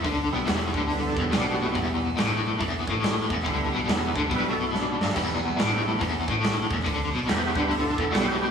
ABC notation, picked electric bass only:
X:1
M:4/4
L:1/8
Q:"Swing" 1/4=141
K:Em
V:1 name="Picked electric bass" clef=bass
D,, B,,, E,,, D,,2 E,,, B,,,2 | E,,,2 A,,,2 E,,, A,,,2 E,,, | D,, B,,, E,,, D,, B,,,3 G,,, | E,,,2 A,,,2 E,,, A,,,2 E,,, |
D,, B,,, E,,, D,,2 E,,, B,,,2 |]